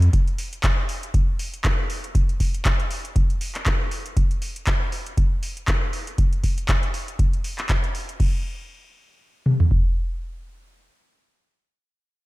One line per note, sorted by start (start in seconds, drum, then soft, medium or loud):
0.02 closed hi-hat soft
0.13 kick loud
0.13 closed hi-hat medium
0.28 closed hi-hat soft
0.38 open hi-hat loud
0.53 closed hi-hat soft
0.63 kick loud
0.63 clap loud
0.63 closed hi-hat medium
0.89 open hi-hat medium
1.03 closed hi-hat soft
1.14 kick loud
1.14 closed hi-hat medium
1.39 open hi-hat medium
1.54 closed hi-hat soft
1.64 kick loud
1.64 clap loud
1.64 closed hi-hat medium
1.90 open hi-hat medium
2.04 closed hi-hat soft
2.15 kick loud
2.15 closed hi-hat medium
2.29 closed hi-hat soft
2.40 kick medium
2.40 open hi-hat medium
2.54 closed hi-hat soft
2.65 kick loud
2.65 clap loud
2.65 closed hi-hat medium
2.80 closed hi-hat soft
2.91 open hi-hat medium
3.05 closed hi-hat medium
3.16 kick loud
3.16 closed hi-hat medium
3.30 closed hi-hat soft
3.41 open hi-hat medium
3.55 clap soft
3.55 closed hi-hat soft
3.66 kick loud
3.66 clap loud
3.66 closed hi-hat medium
3.91 open hi-hat medium
4.06 closed hi-hat soft
4.17 kick loud
4.17 closed hi-hat medium
4.31 closed hi-hat soft
4.42 open hi-hat medium
4.56 closed hi-hat medium
4.67 kick loud
4.67 clap loud
4.67 closed hi-hat medium
4.92 open hi-hat medium
5.06 closed hi-hat medium
5.17 kick loud
5.17 closed hi-hat medium
5.43 open hi-hat medium
5.57 closed hi-hat soft
5.68 kick loud
5.68 clap loud
5.68 closed hi-hat medium
5.93 open hi-hat medium
6.07 closed hi-hat soft
6.18 kick loud
6.18 closed hi-hat medium
6.33 closed hi-hat soft
6.44 kick medium
6.44 open hi-hat medium
6.58 closed hi-hat medium
6.69 kick loud
6.69 clap loud
6.69 closed hi-hat medium
6.83 closed hi-hat soft
6.94 open hi-hat medium
7.08 closed hi-hat medium
7.19 kick loud
7.19 closed hi-hat medium
7.33 closed hi-hat soft
7.44 open hi-hat medium
7.58 clap soft
7.58 closed hi-hat soft
7.69 kick loud
7.69 clap loud
7.69 closed hi-hat medium
7.84 closed hi-hat soft
7.95 open hi-hat medium
8.09 closed hi-hat soft
8.20 kick loud
8.20 crash medium
9.46 mid tom medium
9.60 floor tom medium
9.71 kick medium